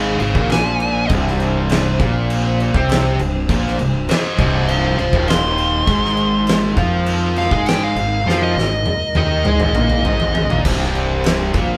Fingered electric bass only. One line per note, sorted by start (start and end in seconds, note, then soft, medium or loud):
0.00 0.16 G#1 medium
0.20 0.34 G#1 medium
0.35 1.06 A#1 medium
1.10 1.95 C1 medium
2.00 2.70 A#1 medium
2.74 3.16 C2 loud
3.19 3.47 C1 medium
3.49 3.77 A#1 loud
3.79 4.07 C1 medium
4.38 4.94 C1 medium
4.98 5.12 C1 medium
5.13 5.84 D#1 loud
5.87 6.73 G#1 medium
6.77 7.47 F2 medium
7.51 7.93 G#2 loud
7.95 8.23 G#1 medium
8.26 8.54 F2 loud
8.55 8.83 G#1 medium
9.15 9.43 D#2 medium
9.45 9.59 G#2 loud
9.60 9.74 G#1 loud
9.74 10.02 A#1 medium
10.05 10.46 G#1 medium
10.49 10.63 A#1 loud
10.65 11.51 C1 loud
11.54 11.77 A#1 medium